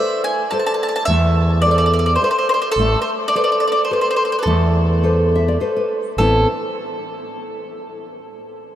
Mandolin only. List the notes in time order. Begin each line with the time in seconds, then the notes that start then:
Already playing: E5
0.24 G#5
0.51 A5
0.59 A5
0.66 A5
0.74 A5
0.83 A5
0.89 A5
0.96 A5
1.05 E5
1.62 D5
1.71 D5
1.78 D5
1.86 D5
1.94 D5
1.99 D5
2.06 D5
2.16 C5
2.24 C5
2.31 C5
2.38 C5
2.49 C5
2.54 C5
2.62 C5
2.71 A4
3.02 C5
3.28 D5
3.36 D5
3.44 D5
3.52 D5
3.60 D5
3.68 D5
3.72 D5
3.85 C5
3.93 C5
4.01 C5
4.11 C5
4.16 C5
4.25 C5
4.32 C5
4.39 B4
4.43 A4
6.18 A4